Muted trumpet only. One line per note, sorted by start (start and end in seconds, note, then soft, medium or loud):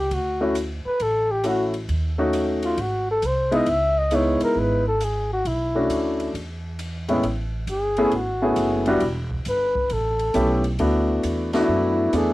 0.00 0.15 G4 medium
0.14 0.42 F#4 medium
0.87 1.04 B4 medium
1.02 1.33 A4 medium
1.31 1.45 G4 medium
1.48 1.65 F#4 medium
2.65 2.82 F4 medium
2.80 3.09 F#4 medium
3.11 3.28 A4 medium
3.26 3.54 C5 medium
3.55 3.71 D#5 medium
3.70 4.00 E5 medium
3.98 4.16 D#5 medium
4.15 4.43 C#5 medium
4.44 4.61 A#4 medium
4.59 4.87 B4 medium
4.88 5.05 A4 medium
5.04 5.32 G#4 medium
5.33 5.49 F#4 medium
5.47 6.35 E4 medium
7.70 8.17 G#4 medium
8.15 8.88 F#4 medium
9.49 9.94 B4 medium
9.93 10.66 A4 medium
11.55 12.17 E4 medium
12.15 12.33 G#4 medium